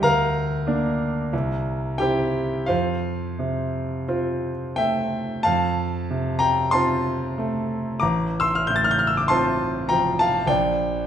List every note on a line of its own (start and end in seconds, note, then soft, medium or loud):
0.02 1.27 D2 medium
0.02 1.95 A#4 medium
0.02 1.95 F5 medium
0.02 1.99 A#5 medium
0.67 1.28 A#3 soft
0.67 1.29 D4 soft
1.33 2.65 C2 medium
1.98 2.65 C4 soft
1.98 2.65 E4 soft
1.98 2.65 G4 medium
1.98 2.68 G5 medium
2.66 5.41 F2 medium
2.66 4.04 F4 medium
2.66 4.04 C5 medium
2.66 4.07 F5 medium
3.39 4.50 C3 soft
4.08 4.74 C4 soft
4.08 4.74 F4 soft
4.76 5.45 A3 soft
4.76 5.41 E5 medium
4.76 5.44 G5 medium
5.43 7.99 F2 medium
5.43 6.38 F5 medium
5.43 6.41 A5 medium
6.10 7.13 C3 soft
6.39 6.71 G5 medium
6.39 6.72 A#5 medium
6.71 7.34 C4 soft
6.71 7.34 F4 soft
6.71 7.98 A5 medium
6.71 8.01 C6 medium
7.38 8.02 A3 soft
8.00 10.45 A1 medium
8.00 8.37 A#5 medium
8.00 8.40 D6 medium
8.40 8.55 C6 medium
8.40 8.55 E6 medium
8.55 8.67 F6 medium
8.67 9.66 A2 soft
8.67 8.76 G6 medium
8.76 8.84 A6 medium
8.84 8.92 F6 medium
8.91 8.99 G6 medium
8.99 9.08 F6 medium
9.07 9.18 E6 medium
9.17 9.28 D6 medium
9.28 9.86 C4 soft
9.28 9.86 F4 medium
9.28 9.85 A5 medium
9.28 9.89 C6 medium
9.89 10.50 F3 soft
9.89 10.17 G5 medium
9.89 10.19 A#5 medium
10.19 10.48 F5 medium
10.19 10.49 A5 medium
10.47 11.07 A#1 medium
10.47 11.07 D5 medium
10.47 11.07 G5 medium